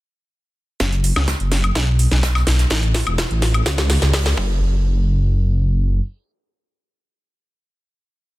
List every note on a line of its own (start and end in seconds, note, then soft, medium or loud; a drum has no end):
0.80 1.12 F#1 loud
0.80 kick loud
0.80 snare soft
0.80 closed hi-hat medium
0.92 closed hi-hat soft
1.04 closed hi-hat medium
1.04 open hi-hat loud
1.16 1.34 C#2 medium
1.16 snare soft
1.16 high woodblock medium
1.28 kick loud
1.28 snare loud
1.28 closed hi-hat medium
1.40 1.71 F#1 medium
1.40 closed hi-hat soft
1.51 snare medium
1.51 closed hi-hat medium
1.51 open hi-hat medium
1.64 closed hi-hat medium
1.64 high woodblock medium
1.75 2.07 B1 medium
1.75 kick loud
1.75 snare medium
1.75 closed hi-hat medium
1.99 closed hi-hat medium
1.99 open hi-hat loud
2.11 2.43 B1 loud
2.11 snare medium
2.11 closed hi-hat medium
2.23 kick loud
2.23 snare loud
2.23 closed hi-hat medium
2.35 snare soft
2.35 high woodblock medium
2.47 2.65 B1 medium
2.47 snare medium
2.47 closed hi-hat medium
2.47 open hi-hat medium
2.59 snare soft
2.59 closed hi-hat medium
2.70 3.02 A1 loud
2.70 kick loud
2.70 snare medium
2.70 closed hi-hat medium
2.83 closed hi-hat soft
2.94 kick medium
2.94 snare medium
2.94 closed hi-hat medium
2.94 open hi-hat loud
3.07 3.25 E1 medium
3.07 closed hi-hat medium
3.07 high woodblock medium
3.18 kick loud
3.18 snare loud
3.18 snare medium
3.18 closed hi-hat medium
3.31 3.62 A1 medium
3.31 closed hi-hat soft
3.42 snare medium
3.42 closed hi-hat medium
3.42 open hi-hat medium
3.54 closed hi-hat medium
3.54 high woodblock medium
3.66 3.97 C#2 medium
3.66 kick loud
3.66 snare medium
3.66 closed hi-hat medium
3.78 snare soft
3.78 snare medium
3.90 snare medium
3.90 closed hi-hat medium
3.90 open hi-hat loud
4.02 4.33 C#2 loud
4.02 snare medium
4.02 snare soft
4.02 closed hi-hat medium
4.13 kick loud
4.13 snare loud
4.13 closed hi-hat medium
4.13 open hi-hat medium
4.26 snare medium
4.37 6.00 F#1 loud
4.37 kick loud